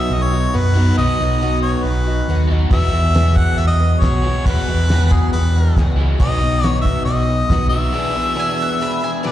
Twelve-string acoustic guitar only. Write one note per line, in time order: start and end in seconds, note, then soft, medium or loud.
0.00 0.10 B2 medium
0.00 0.10 B3 medium
0.00 0.10 D#4 medium
0.00 0.11 F#4 medium
0.10 0.32 F#3 medium
0.10 0.32 B3 soft
0.10 0.32 D#4 medium
0.10 0.31 F#4 medium
0.32 0.53 B3 soft
0.32 0.53 D#4 soft
0.32 0.53 F#4 medium
0.53 0.75 B2 medium
0.53 0.76 F#3 medium
0.53 0.76 B3 medium
0.53 0.75 D#4 medium
0.53 0.74 F#4 medium
0.76 0.98 B3 soft
0.76 0.98 D#4 soft
0.76 0.97 F#4 medium
0.98 1.19 B2 medium
0.98 1.20 F#3 medium
0.98 1.20 B3 medium
0.98 1.20 D#4 medium
0.98 1.19 F#4 medium
1.21 1.41 B3 soft
1.21 1.41 D#4 soft
1.21 1.42 F#4 soft
1.42 1.85 B2 medium
1.42 1.85 F#3 medium
1.42 1.85 B3 medium
1.42 1.85 D#4 medium
1.42 1.87 F#4 medium
1.85 2.07 F#3 medium
1.85 2.07 B3 medium
1.85 2.06 D#4 medium
1.85 2.05 F#4 medium
2.06 2.28 B3 soft
2.06 2.29 D#4 soft
2.06 2.28 F#4 soft
2.29 2.50 B2 medium
2.29 2.51 F#3 medium
2.29 2.51 B3 medium
2.29 2.50 D#4 medium
2.29 2.49 F#4 medium
2.51 2.71 B3 soft
2.51 2.72 D#4 soft
2.51 2.71 F#4 medium
2.71 2.93 E2 medium
2.71 2.94 B2 medium
2.71 2.94 F#3 medium
2.71 2.93 G#3 medium
2.71 2.93 B3 medium
2.71 2.92 F#4 medium
2.93 3.13 F#3 soft
2.93 3.14 G#3 soft
2.93 3.14 B3 soft
2.93 3.14 F#4 soft
3.14 3.58 E2 medium
3.14 3.59 B2 medium
3.14 3.57 F#3 medium
3.14 3.57 G#3 medium
3.14 3.58 B3 medium
3.14 3.59 F#4 medium
3.58 3.79 F#3 medium
3.58 3.79 G#3 medium
3.58 3.79 B3 medium
3.58 3.77 F#4 medium
3.79 4.01 F#3 soft
3.79 4.01 G#3 soft
3.79 4.01 B3 soft
3.79 4.01 F#4 soft
4.02 4.24 E2 medium
4.02 4.24 B2 medium
4.02 4.24 F#3 medium
4.02 4.24 G#3 medium
4.02 4.24 B3 medium
4.02 4.23 F#4 medium
4.24 4.45 F#3 soft
4.24 4.46 G#3 soft
4.24 4.46 B3 soft
4.24 4.46 F#4 soft
4.46 4.68 E2 medium
4.46 4.68 B2 medium
4.46 4.68 F#3 medium
4.46 4.68 G#3 medium
4.46 4.67 B3 medium
4.46 4.67 F#4 medium
4.68 4.89 F#3 soft
4.68 4.89 G#3 soft
4.68 4.89 B3 soft
4.68 4.90 F#4 medium
4.89 5.33 E2 medium
4.89 5.33 B2 medium
4.89 5.34 F#3 medium
4.89 5.33 G#3 medium
4.89 5.35 B3 medium
4.89 5.36 F#4 medium
5.34 5.55 F#3 medium
5.34 5.56 G#3 medium
5.34 5.55 B3 medium
5.34 5.55 F#4 medium
5.56 5.77 F#3 soft
5.56 5.78 G#3 soft
5.56 5.77 B3 soft
5.56 5.77 F#4 soft
5.78 5.99 E2 medium
5.78 5.99 B2 medium
5.78 5.99 F#3 medium
5.78 5.99 G#3 medium
5.78 5.98 B3 medium
5.78 5.97 F#4 medium
5.98 6.19 F#3 soft
5.98 6.21 G#3 medium
5.98 6.20 B3 medium
5.98 6.20 F#4 medium
6.20 6.42 B2 medium
6.20 6.42 F#3 medium
6.20 6.42 B3 medium
6.20 6.41 D#4 medium
6.20 6.40 F#4 medium
6.41 6.63 B3 soft
6.41 6.64 D#4 soft
6.41 6.63 F#4 soft
6.64 7.07 B2 medium
6.64 7.06 F#3 medium
6.64 7.07 B3 medium
6.64 7.07 D#4 medium
6.64 7.07 F#4 medium
7.07 7.29 F#3 medium
7.07 7.29 B3 medium
7.07 7.29 D#4 medium
7.07 7.27 F#4 medium
7.29 7.51 B3 soft
7.29 7.51 D#4 soft
7.29 7.50 F#4 soft
7.51 7.73 B2 medium
7.51 7.72 F#3 medium
7.51 7.73 B3 medium
7.51 7.72 D#4 medium
7.51 7.71 F#4 medium
7.72 7.93 B3 soft
7.72 7.94 D#4 medium
7.72 7.93 F#4 soft
7.93 8.15 E2 medium
7.93 8.15 B2 medium
7.93 8.15 E3 medium
7.93 8.14 B3 medium
7.93 8.14 D4 medium
7.93 8.13 G#4 medium
8.15 8.35 E3 soft
8.15 8.35 B3 soft
8.15 8.35 D4 soft
8.15 8.36 G#4 soft
8.35 8.80 E2 medium
8.35 8.80 B2 medium
8.35 8.78 E3 medium
8.35 8.79 B3 medium
8.35 8.80 D4 medium
8.35 8.80 G#4 medium
8.79 9.02 E3 medium
8.79 9.01 B3 medium
8.79 9.01 D4 medium
8.79 9.00 G#4 medium
9.01 9.22 E3 soft
9.01 9.23 B3 soft
9.01 9.23 D4 soft
9.01 9.23 G#4 medium
9.23 9.32 E2 medium
9.23 9.32 B2 medium
9.23 9.32 E3 medium
9.23 9.32 B3 medium
9.23 9.32 D4 medium
9.23 9.32 G#4 medium